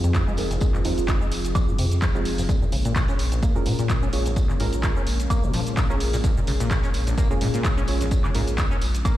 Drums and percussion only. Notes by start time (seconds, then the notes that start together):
0.04 closed hi-hat, shaker
0.14 kick, snare, clap, closed hi-hat, tambourine, shaker
0.28 shaker
0.37 open hi-hat, tambourine
0.51 closed hi-hat, shaker
0.61 kick, closed hi-hat, tambourine, shaker
0.75 clap, shaker
0.84 snare, open hi-hat, tambourine
0.98 closed hi-hat, shaker
1.08 kick, snare, clap, closed hi-hat, tambourine, shaker
1.22 shaker
1.32 open hi-hat, tambourine
1.44 snare, closed hi-hat, shaker
1.55 kick, closed hi-hat, tambourine, high woodblock, shaker
1.68 shaker
1.79 open hi-hat, tambourine
1.91 snare, closed hi-hat, shaker
2.02 kick, snare, clap, closed hi-hat, tambourine, shaker
2.15 shaker
2.25 open hi-hat, tambourine
2.38 closed hi-hat, open hi-hat, shaker
2.49 kick, closed hi-hat, tambourine, shaker
2.62 shaker
2.72 open hi-hat, tambourine
2.85 closed hi-hat, shaker
2.96 kick, snare, clap, closed hi-hat, tambourine, shaker
3.08 closed hi-hat, shaker
3.19 open hi-hat, tambourine
3.32 closed hi-hat, shaker
3.43 kick, closed hi-hat, tambourine, shaker
3.56 shaker
3.66 open hi-hat, tambourine
3.79 closed hi-hat, shaker
3.89 kick, snare, clap, closed hi-hat, tambourine, shaker
4.03 shaker
4.13 open hi-hat, tambourine
4.26 closed hi-hat, shaker
4.36 kick, closed hi-hat, tambourine, shaker
4.50 clap, shaker
4.60 snare, open hi-hat, tambourine
4.73 closed hi-hat, shaker
4.83 kick, snare, clap, closed hi-hat, tambourine, shaker
4.97 shaker
5.07 open hi-hat, tambourine
5.20 closed hi-hat, shaker
5.30 kick, closed hi-hat, tambourine, high woodblock, shaker
5.44 shaker
5.54 open hi-hat, tambourine
5.66 snare, closed hi-hat, shaker
5.77 kick, snare, clap, closed hi-hat, tambourine, shaker
5.90 shaker
6.00 open hi-hat, tambourine
6.13 closed hi-hat, open hi-hat, shaker
6.24 kick, closed hi-hat, tambourine, shaker
6.37 shaker
6.47 open hi-hat, tambourine
6.60 closed hi-hat, shaker
6.70 kick, snare, clap, closed hi-hat, tambourine, shaker
6.83 closed hi-hat, shaker
6.94 open hi-hat, tambourine
7.07 closed hi-hat, shaker
7.17 kick, closed hi-hat, tambourine, shaker
7.31 shaker
7.41 open hi-hat, tambourine
7.54 closed hi-hat, shaker
7.64 kick, snare, clap, closed hi-hat, tambourine, shaker
7.78 shaker
7.87 open hi-hat, tambourine
8.01 closed hi-hat, shaker
8.11 kick, closed hi-hat, tambourine, shaker
8.24 clap, high woodblock, shaker
8.34 snare, open hi-hat, tambourine
8.47 closed hi-hat, shaker
8.58 kick, snare, clap, closed hi-hat, tambourine, shaker
8.72 shaker
8.81 open hi-hat, tambourine
8.94 snare, closed hi-hat, shaker
9.05 kick, closed hi-hat, tambourine, high woodblock, shaker